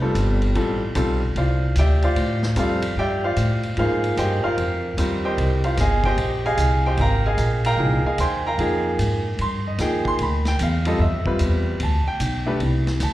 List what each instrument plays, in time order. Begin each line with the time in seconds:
Already playing: upright bass F1, grand piano B4
0.02 grand piano G3 C4 F4 A4
0.15 upright bass G1, hi-hat pedal, ride
0.42 ride
0.55 upright bass A1, grand piano G3 C4 F4 A4, ride
0.95 upright bass B1, grand piano G3 C4 F4 A4, hi-hat pedal, ride
1.36 upright bass C2, grand piano F4 C5 D5 F5, ride
1.75 upright bass D2, grand piano G4 D5 E5 G5, hi-hat pedal, ride
2.02 grand piano F4 C5 D5 F5, ride
2.16 upright bass A2, ride
2.43 snare
2.56 upright bass F2, grand piano G3 C4 F4 A4 C5 D5 F5, hi-hat pedal, ride
2.82 ride
2.96 upright bass G2, grand piano G4 D5 E5 G5
3.24 grand piano F4 C5 D5 F5
3.36 upright bass A2, hi-hat pedal, ride
3.63 ride
3.77 upright bass G#2, grand piano F3 A#3 D#4 F4 G#4 A#4 C5 F5, ride
4.04 ride
4.17 upright bass G2, grand piano G4 C5 D#5 G5, hi-hat pedal, ride
4.44 grand piano F4 A#4 C5 F5, muted upright bass stroke
4.58 upright bass F2, ride
4.97 upright bass D#2, grand piano G3 C4 F4 A#4, hi-hat pedal, ride
5.25 grand piano G4 C5 D#5 G5
5.38 upright bass C2, ride
5.64 grand piano F4 A#4 C5 F5, ride
5.77 upright bass G1, grand piano G#4 D#5 F5 G#5, snare, hi-hat pedal, ride
6.03 grand piano G4 C5 D#5 G5, kick, ride
6.17 upright bass A#1, ride
6.46 grand piano G#4 D#5 F5 G#5
6.57 upright bass C2, hi-hat pedal, ride
6.86 grand piano G4 C5 D#5 G5
6.97 upright bass G#1, grand piano A#4 F5 G5 A#5, ride
7.26 grand piano G#4 D#5 F5 G#5
7.37 upright bass A#1, hi-hat pedal, ride
7.64 grand piano A#4 F5 G5 A#5, ride
7.78 upright bass C2, grand piano F3 A#3 D#4 G#4
8.04 grand piano G#4 D#5 F5 G#5, muted upright bass stroke
8.18 upright bass D#2, grand piano C5 G5 G#5 C6, hi-hat pedal, ride
8.47 grand piano A#4 F5 G5 A#5
8.58 upright bass F2, grand piano F3 A#3 D#4 G#4, ride
8.98 upright bass G#2, hi-hat pedal, ride
9.38 upright bass G2, grand piano C6, ride
9.67 grand piano D#5
9.78 upright bass D#2, grand piano F3 A#3 D#4 G#4 G5, snare, hi-hat pedal, ride
10.05 grand piano C6, kick
10.19 upright bass D2, grand piano B5, ride
10.45 grand piano G5, snare, ride
10.59 upright bass E2, grand piano F5, hi-hat pedal, ride
10.85 grand piano G3 C4 F4 A4 D#5, ride
10.99 upright bass F2, grand piano E5
11.26 grand piano G3 C4 F4 B4, muted upright bass stroke, kick
11.39 upright bass E2, hi-hat pedal, ride
11.80 upright bass D2, grand piano A5, ride
12.06 grand piano G5, muted upright bass stroke
12.20 upright bass B1, hi-hat pedal, ride
12.46 grand piano A3 D4 G4 B4
12.60 upright bass C2, ride
12.87 snare, ride
13.00 upright bass D2, grand piano A5, snare, hi-hat pedal, ride